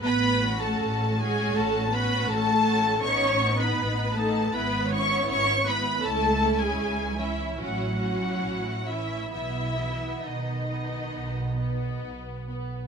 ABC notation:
X:1
M:4/4
L:1/16
Q:1/4=78
K:Bmix
V:1 name="Violin section"
b3 a3 g2 a2 b2 a4 | c'3 b3 a2 b2 c'2 c'2 b2 | a3 g3 e2 f6 e2 | e4 d8 z4 |]
V:2 name="Viola section"
B3 A3 G2 A2 B2 A4 | c3 B3 A2 B2 c2 c2 B2 | A3 G3 E2 F6 E2 | E4 D8 z4 |]
V:3 name="Violin section"
z2 [CF]4 [CF]4 [CF]4 [CF]2 | [B,D]2 [B,D]4 [B,D]2 [B,E]2 [B,E]4 [B,E]2 | [CE]2 [CE]4 [CE]2 [CE]2 [CE]4 [CE]2 | B,2 B,4 B,4 B,4 B,2 |]
V:4 name="Cello section"
B,3 A,3 G,2 A,2 B,2 A,4 | C3 B,3 A,2 B,2 C2 C2 B,2 | A,3 G,3 E,2 F,6 E,2 | E,4 D,8 z4 |]
V:5 name="Double bass section" clef=bass
A,,,4 A,,,4 A,,,4 A,,,4 | A,,,4 A,,,4 G,,,4 G,,,4 | C,,4 C,,4 A,,,4 A,,,4 | B,,,4 B,,,4 B,,,4 B,,,4 |]